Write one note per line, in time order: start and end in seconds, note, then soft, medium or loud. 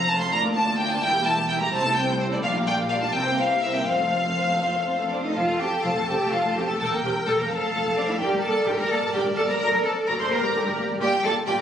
0.00 0.31 F1 medium
0.00 0.31 F2 medium
0.06 0.20 A3 medium
0.06 0.20 F4 soft
0.06 0.18 C5 medium
0.06 0.20 A5 medium
0.18 0.32 F3 soft
0.18 0.32 C4 soft
0.18 0.31 A4 soft
0.18 0.31 F5 soft
0.18 0.33 C6 medium
0.30 1.01 D2 medium
0.30 1.02 D2 medium
0.30 0.42 D4 medium
0.30 0.42 F4 medium
0.30 0.42 A#4 medium
0.30 0.40 A#5 medium
0.42 0.56 A#3 soft
0.42 0.54 D4 soft
0.42 0.55 F4 soft
0.42 0.54 D5 soft
0.54 0.66 D4 soft
0.54 0.67 F4 soft
0.54 0.66 A#4 soft
0.54 0.78 A5 medium
0.65 0.79 A#3 medium
0.65 0.78 D4 soft
0.65 0.78 F4 soft
0.65 0.78 D5 soft
0.77 0.89 D4 medium
0.77 0.90 D4 soft
0.77 0.90 F4 soft
0.77 0.88 A#4 medium
0.77 0.90 G5 medium
0.88 1.02 A#3 medium
0.88 1.02 D4 soft
0.88 1.01 F4 soft
0.88 1.01 D5 soft
0.88 1.02 A5 medium
0.99 1.70 E1 medium
0.99 1.70 E2 medium
0.99 1.13 G3 medium
0.99 1.11 E4 medium
0.99 1.11 A#4 medium
0.99 1.25 G5 medium
1.04 1.14 E4 medium
1.11 1.25 A#3 soft
1.11 1.24 G4 soft
1.11 1.25 G4 soft
1.21 1.35 E4 medium
1.21 1.35 A#4 medium
1.21 1.48 A5 medium
1.26 1.37 G3 medium
1.26 1.37 E4 medium
1.34 1.48 A#3 soft
1.34 1.47 G4 soft
1.34 1.48 G4 soft
1.47 1.59 G3 medium
1.47 1.59 E4 medium
1.47 1.60 E4 medium
1.47 1.59 A#4 medium
1.47 1.53 G5 medium
1.59 1.71 A#3 medium
1.59 1.71 G4 medium
1.59 1.71 G4 soft
1.59 1.72 A#5 medium
1.71 2.42 C2 medium
1.71 2.42 C3 medium
1.71 1.81 C4 medium
1.71 1.83 C4 medium
1.71 1.82 E4 medium
1.71 1.83 C5 medium
1.71 1.95 A5 medium
1.82 1.95 A3 soft
1.82 1.94 C4 soft
1.82 1.95 E4 soft
1.82 1.95 A4 soft
1.95 2.07 C4 medium
1.95 2.06 C4 medium
1.95 2.07 E4 soft
1.95 2.07 C5 soft
1.95 2.19 G5 medium
2.06 2.19 A3 soft
2.06 2.17 C4 soft
2.06 2.18 E4 soft
2.06 2.18 A4 soft
2.18 2.29 C4 medium
2.18 2.29 C4 soft
2.18 2.29 E4 soft
2.18 2.29 C5 medium
2.18 2.24 C5 medium
2.30 2.42 A3 soft
2.30 2.42 C4 medium
2.30 2.42 E4 soft
2.30 2.42 A4 soft
2.30 2.37 D5 medium
2.41 3.12 A#1 medium
2.41 3.12 A#2 medium
2.41 2.53 G3 medium
2.41 2.53 D4 medium
2.41 2.54 F4 medium
2.41 2.53 D5 medium
2.41 2.51 F5 medium
2.53 2.66 A#3 soft
2.53 2.66 F4 medium
2.53 2.66 G4 soft
2.53 2.66 F5 medium
2.65 2.78 G3 medium
2.65 2.78 D4 medium
2.65 2.77 F4 medium
2.65 2.78 D5 medium
2.65 2.75 G5 medium
2.77 2.90 A#3 soft
2.77 2.89 F4 soft
2.77 2.89 G4 soft
2.77 2.89 F5 soft
2.89 3.01 G3 soft
2.89 3.01 D4 medium
2.89 3.01 F4 medium
2.89 3.01 D5 medium
2.89 2.94 F5 medium
3.02 3.14 A#3 soft
3.02 3.14 F4 soft
3.02 3.14 G4 soft
3.02 3.14 F5 soft
3.02 3.13 A5 medium
3.14 3.86 C2 soft
3.14 3.85 C3 medium
3.14 3.24 C4 soft
3.14 3.25 E4 soft
3.14 3.24 A#4 soft
3.14 3.25 C5 soft
3.14 3.38 G5 medium
3.25 3.38 A#3 soft
3.25 3.37 C4 soft
3.25 3.37 G4 soft
3.25 3.36 A#4 soft
3.37 3.47 C4 soft
3.37 3.50 E4 soft
3.37 3.50 A#4 soft
3.37 3.49 C5 soft
3.37 3.62 F5 medium
3.48 3.61 A#3 soft
3.48 3.60 C4 soft
3.48 3.62 G4 soft
3.48 3.62 A#4 soft
3.61 3.72 C4 soft
3.61 3.73 E4 soft
3.61 3.74 A#4 soft
3.61 3.74 C5 soft
3.61 3.75 E5 medium
3.73 3.86 A#3 soft
3.73 3.85 C4 soft
3.73 3.88 G4 soft
3.73 3.87 A#4 soft
3.73 3.88 G5 medium
3.86 5.15 F1 medium
3.86 5.11 F2 medium
3.86 3.98 C4 medium
3.86 3.98 F4 medium
3.86 3.99 C5 soft
3.86 5.11 F5 medium
3.99 4.12 A3 soft
3.99 4.10 C4 soft
3.99 4.13 A4 soft
3.99 4.13 F5 soft
4.11 4.22 C4 soft
4.11 4.24 F4 soft
4.11 4.25 C5 soft
4.23 4.36 A3 soft
4.23 4.35 C4 soft
4.23 4.36 A4 soft
4.23 4.36 F5 soft
4.36 4.46 C4 soft
4.36 4.48 F4 soft
4.36 4.48 C5 soft
4.47 4.61 A3 soft
4.47 4.59 C4 soft
4.47 4.62 A4 soft
4.47 4.62 F5 soft
4.60 4.71 C4 soft
4.60 4.73 F4 soft
4.60 4.74 C5 soft
4.72 4.85 A3 soft
4.72 4.85 C4 soft
4.72 4.86 A4 soft
4.72 4.86 F5 soft
4.86 4.98 C4 soft
4.86 4.98 F4 soft
4.86 4.98 C5 soft
4.98 5.11 A3 soft
4.98 5.10 C4 soft
4.98 5.11 A4 soft
4.98 5.11 F5 soft
5.10 5.22 C4 soft
5.10 5.23 D4 medium
5.10 5.24 F4 soft
5.10 5.23 C5 soft
5.10 5.22 D5 soft
5.23 5.36 A3 soft
5.23 5.36 C4 soft
5.23 5.36 D#4 medium
5.23 5.36 A4 soft
5.23 5.35 D#5 medium
5.23 5.34 F5 soft
5.35 5.41 F1 medium
5.35 5.40 F3 medium
5.35 5.59 F4 medium
5.35 6.76 A4 medium
5.35 5.60 F5 medium
5.35 6.76 A5 medium
5.48 5.53 F1 soft
5.48 5.53 A3 soft
5.59 5.65 F1 soft
5.59 5.65 C4 soft
5.59 5.84 G4 medium
5.59 5.83 G5 medium
5.83 5.89 F1 medium
5.83 5.90 F3 medium
5.83 5.89 F4 medium
5.83 5.96 F5 medium
5.96 6.02 F1 soft
5.96 6.02 A3 soft
5.96 6.02 A4 medium
5.96 6.09 A5 medium
6.07 6.14 F1 soft
6.07 6.15 C4 soft
6.07 6.32 G4 medium
6.07 6.32 G5 medium
6.20 6.25 F1 soft
6.20 6.25 A3 soft
6.31 6.37 F1 medium
6.31 6.38 F3 medium
6.31 6.56 F4 medium
6.31 6.56 F5 medium
6.45 6.49 F1 soft
6.45 6.50 A3 medium
6.56 6.62 F1 medium
6.56 6.62 C4 soft
6.56 6.68 G4 medium
6.56 6.68 G5 medium
6.67 6.73 F1 soft
6.67 6.74 A3 soft
6.67 6.79 A4 medium
6.67 6.78 A5 medium
6.80 6.85 E1 medium
6.80 6.85 G3 medium
6.80 6.88 A4 medium
6.80 7.51 A#4 medium
6.80 7.49 G5 soft
6.80 6.88 A5 medium
6.92 6.97 E1 soft
6.92 6.98 A#3 soft
7.03 7.08 E1 soft
7.03 7.10 C4 soft
7.03 7.12 G4 medium
7.03 7.11 G5 soft
7.27 7.32 E1 medium
7.27 7.32 G3 medium
7.27 7.38 A4 medium
7.27 7.32 A5 medium
7.38 7.43 E1 soft
7.38 7.44 A#3 soft
7.38 7.44 A#4 medium
7.38 7.50 A#5 medium
7.49 7.54 F1 soft
7.49 7.56 C4 soft
7.49 7.96 A4 medium
7.49 8.21 A4 medium
7.49 8.20 F5 medium
7.49 7.96 A5 medium
7.61 7.66 F1 soft
7.61 7.68 A3 soft
7.73 7.78 F1 medium
7.73 7.79 F3 medium
7.84 7.89 F1 soft
7.84 7.91 A3 soft
7.96 8.01 F1 medium
7.96 8.02 C4 medium
7.96 8.09 D4 medium
7.96 8.08 D5 medium
8.07 8.13 F1 soft
8.07 8.14 A3 medium
8.07 8.21 E4 medium
8.07 8.20 E5 medium
8.18 8.25 G1 medium
8.18 8.25 D3 medium
8.18 8.43 G4 loud
8.18 9.58 A#4 medium
8.18 10.96 D5 medium
8.18 8.26 G5 medium
8.31 8.36 G1 soft
8.31 8.38 G3 soft
8.42 8.47 G1 medium
8.42 8.49 A#3 soft
8.42 8.67 A4 medium
8.42 8.66 A5 medium
8.66 8.71 G1 medium
8.66 8.73 D3 medium
8.66 8.79 G4 medium
8.66 8.79 G5 medium
8.77 8.82 G1 medium
8.77 8.84 G3 medium
8.77 8.91 A#4 medium
8.77 8.90 A#5 medium
8.90 8.95 G1 soft
8.90 8.96 A#3 soft
8.90 8.98 A4 loud
8.90 9.15 A5 medium
9.02 9.07 G1 medium
9.02 9.08 G3 medium
9.13 9.18 G1 medium
9.13 9.20 D3 medium
9.13 9.21 G4 medium
9.13 9.22 G5 medium
9.25 9.30 G1 soft
9.25 9.31 G3 medium
9.37 9.42 G1 medium
9.37 9.43 A#3 medium
9.37 9.42 A4 medium
9.37 9.49 A5 medium
9.48 9.54 G1 medium
9.48 9.54 G3 medium
9.48 9.54 A#4 medium
9.48 9.58 A#5 medium
9.59 9.65 F#1 medium
9.59 9.65 F#3 loud
9.59 10.32 A4 medium
9.59 9.84 A#4 loud
9.59 9.67 A#5 medium
9.72 9.77 F#1 medium
9.72 9.77 A3 soft
9.84 9.89 F#1 medium
9.84 9.89 C4 medium
9.84 10.07 A4 medium
9.84 9.93 A5 medium
10.07 10.13 F#1 medium
10.07 10.12 F#3 medium
10.07 10.12 A#4 loud
10.07 10.12 A#5 medium
10.20 10.25 F#1 medium
10.20 10.24 A3 medium
10.20 10.31 C5 loud
10.20 10.24 C6 medium
10.31 10.37 G1 medium
10.31 10.36 A#3 medium
10.31 11.01 G4 medium
10.31 10.78 A#4 medium
10.31 10.77 A#5 medium
10.42 10.49 G1 medium
10.42 10.47 G3 medium
10.54 10.60 G1 medium
10.54 10.59 D3 medium
10.66 10.72 G1 medium
10.66 10.70 G3 medium
10.78 10.83 G1 medium
10.78 10.82 A#3 medium
10.90 10.94 G1 medium
10.90 10.94 G3 medium
11.00 11.09 G1 medium
11.00 11.08 A#3 medium
11.00 11.08 F4 medium
11.00 11.22 G4 loud
11.00 11.09 D5 medium
11.00 11.23 G5 medium
11.23 11.33 G1 medium
11.23 11.32 A#3 medium
11.23 11.31 F4 medium
11.23 11.31 A4 medium
11.23 11.32 D5 medium
11.23 11.33 A5 medium
11.46 11.56 G1 medium
11.46 11.55 A#3 medium
11.46 11.55 F4 medium
11.46 11.58 G4 loud
11.46 11.54 D5 medium
11.46 11.51 G5 loud